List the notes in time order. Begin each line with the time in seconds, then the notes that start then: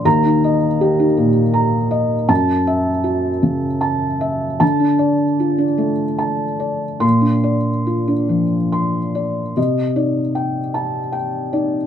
0.05 D#2 A#5
0.26 D#4
0.44 D#5
0.81 G4
0.99 D#4
1.17 A#2
1.54 A#5
1.91 D#5
2.28 F#2 A5
2.67 E5
3.04 F#4
3.43 C#3
3.81 A5
4.21 E5
4.60 D3 A5
4.80 D4
4.99 D5
5.40 F4
5.58 D4
5.78 A3
6.19 A5
6.60 D5
7.00 A#2 C6
7.21 D4
7.44 D5
7.87 F4
8.08 D4
8.29 F3
8.72 C6
9.15 D5
9.57 C3 D#5
9.96 D#4 D5
10.35 G5
10.74 A5
11.12 G5
11.53 D#4 D5